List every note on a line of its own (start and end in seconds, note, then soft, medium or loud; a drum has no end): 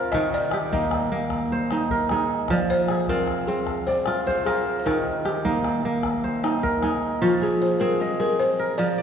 0.00 0.11 F3 medium
0.00 0.55 C4 medium
0.00 1.26 F4 medium
0.00 1.02 A#4 medium
0.00 0.10 C5 medium
0.12 2.48 D#3 medium
0.12 0.33 D#5 loud
0.12 calabash thump medium
0.12 calabash click medium
0.22 calabash click soft
0.34 0.74 D5 loud
0.51 1.94 G4 medium
0.51 calabash click medium
0.72 1.11 A#3 medium
0.72 1.71 D#4 medium
0.72 1.28 D#5 medium
0.72 calabash thump medium
0.91 calabash click medium
1.12 3.05 A#3 medium
1.30 calabash thump medium
1.30 calabash click medium
1.51 2.71 C5 medium
1.51 calabash click soft
1.71 2.11 D#4 medium
1.71 calabash click medium
1.90 3.18 A#4 medium
1.90 calabash thump medium
2.09 3.73 D#4 medium
2.09 2.89 G#4 medium
2.09 calabash click medium
2.29 calabash click soft
2.48 4.84 F3 medium
2.48 calabash thump medium
2.48 calabash click medium
2.53 2.72 D5 medium
2.58 calabash click soft
2.70 3.07 C5 loud
2.88 4.26 G#4 medium
2.88 calabash click medium
3.08 3.48 C4 medium
3.08 4.07 F4 medium
3.08 3.50 A#4 medium
3.08 calabash thump medium
3.27 calabash click medium
3.47 5.28 C4 medium
3.47 3.85 G#4 medium
3.67 calabash thump medium
3.67 calabash click medium
3.86 4.25 C5 medium
3.86 4.92 D5 medium
3.86 calabash click soft
4.06 4.46 F4 medium
4.06 calabash click medium
4.27 4.45 C5 medium
4.27 5.46 C5 medium
4.27 calabash thump medium
4.45 5.98 F4 medium
4.45 4.80 G#4 medium
4.45 5.74 A#4 medium
4.45 calabash click medium
4.67 calabash click soft
4.79 4.86 C5 medium
4.85 7.20 D#3 medium
4.85 5.41 A#4 medium
4.85 calabash thump medium
4.85 calabash click medium
5.25 6.66 G4 medium
5.25 calabash click medium
5.36 calabash click soft
5.45 5.85 A#3 medium
5.45 6.43 D#4 medium
5.45 calabash thump medium
5.64 calabash click medium
5.85 7.78 A#3 medium
5.85 calabash click soft
6.03 calabash thump medium
6.03 calabash click medium
6.14 calabash click soft
6.24 7.43 C5 medium
6.24 calabash click soft
6.34 calabash click soft
6.43 6.82 D#4 medium
6.43 calabash click medium
6.54 calabash click soft
6.63 7.90 A#4 medium
6.63 calabash thump medium
6.73 calabash click soft
6.82 8.45 D#4 medium
6.82 7.41 G#4 medium
6.82 calabash click medium
7.12 calabash click soft
7.22 8.78 F3 medium
7.22 8.73 F4 medium
7.22 7.43 F4 medium
7.42 7.80 G#4 medium
7.42 7.60 G#4 medium
7.62 7.81 C5 medium
7.80 9.02 C4 medium
7.80 8.19 G#4 medium
7.80 8.00 A#4 medium
8.00 8.09 G#4 medium
8.00 9.02 D#5 medium
8.20 9.02 G#4 medium
8.20 8.40 A#4 medium
8.39 8.79 C5 loud
8.59 9.02 A#4 medium
8.78 9.02 F3 medium
8.78 9.02 D5 loud
8.98 9.02 D5 medium